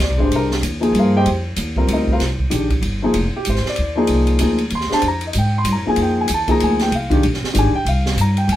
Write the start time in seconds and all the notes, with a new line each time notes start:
0.00 D5, snare, ride
0.10 C2
0.18 G#1 G#3 D4 G4 C5, kick
0.24 C5
0.31 C2, ride
0.36 A#4
0.51 snare
0.62 D#2, hi-hat pedal, ride
0.80 F3 A#3 D#4 G#4, ride
0.92 G2, ride
0.99 F4 A#4 C5 F5
1.16 G4 C5 D#5 G5
1.26 F2, ride
1.56 D#2, hi-hat pedal, ride
1.76 G3 C4 F4 A#4, kick
1.87 D2, ride
1.93 D#4 A#4 C5 D#5
2.08 kick
2.12 F4 A#4 C5 F5
2.19 C2, snare, ride
2.39 kick
2.50 A#1 D#3 G#3 D4 G4, hi-hat pedal, ride
2.70 kick, ride
2.82 G1, ride
3.02 F3 A#3 D#4 G#4
3.14 F1, ride
3.36 G4
3.45 G#1, hi-hat pedal, ride
3.50 C5
3.56 snare
3.66 D5, muted upright bass stroke, snare
3.76 D#2, ride
3.96 F3 A#3 D#4 G#4
4.07 C2, ride
4.27 ride
4.39 D2 F3 A#3 D#4 G#4, hi-hat pedal, ride
4.58 ride
4.70 D#2, ride
4.75 C6
4.81 snare
4.89 G#3 D4 G4 C5, muted upright bass stroke, snare
4.94 A5
5.02 F2, ride
5.08 A#5
5.21 ride
5.27 D#5
5.33 G#2, hi-hat pedal, ride
5.38 G5
5.58 C6
5.64 G2, hi-hat pedal, ride
5.72 F2 A#5
5.86 D#2 F3 A#3 D#4 G#4 G#5
5.96 F2, ride
6.02 G5
6.21 G#5
6.28 D#2, hi-hat pedal, ride
6.34 A5
6.47 F3 A#3 D#4 G#4 A#5, kick, ride
6.60 D2 G#5, ride
6.79 G5, snare, ride
6.91 C2, ride
6.95 F5
7.10 D#3 G#3 D4 G4, kick, ride
7.23 A#1, ride
7.34 snare
7.42 muted upright bass stroke, snare
7.54 G#1 D#3 G#3 D4 G4, hi-hat pedal, ride
7.59 G#5
7.73 G5, muted upright bass stroke
7.85 C2 F5, ride
8.06 snare
8.16 G2, hi-hat pedal, ride
8.21 A#5
8.37 G5, ride
8.48 F2, ride
8.52 G#5